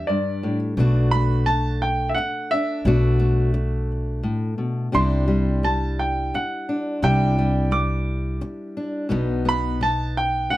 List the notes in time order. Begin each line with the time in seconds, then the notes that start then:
Already playing: G3 D4 G4
0.07 G2 D5
0.43 A2
0.77 B1 B2 A3 D4 F#4
1.11 A3 B5
1.46 A5, muted steel-string acoustic guitar stroke
1.82 G5
2.09 E5
2.15 F#5, muted steel-string acoustic guitar stroke
2.51 D4 E5
2.85 B1 B2 A3 D4 F#4
3.19 A3
3.54 muted steel-string acoustic guitar stroke
4.23 A2
4.58 B2
4.92 C2 C3 G3 D4 E4 C6
5.28 G3
5.63 A5, muted steel-string acoustic guitar stroke
5.99 G5
6.34 F#5, muted steel-string acoustic guitar stroke
6.69 D4
7.02 C2 C3 G3 D4 E4 G5
7.38 G3
7.71 D6, muted steel-string acoustic guitar stroke
8.41 muted steel-string acoustic guitar stroke
8.77 D4
9.09 B1 B2 B3 D#4
9.45 B3 B5
9.81 A5, muted steel-string acoustic guitar stroke
10.17 G5
10.50 F#5, muted steel-string acoustic guitar stroke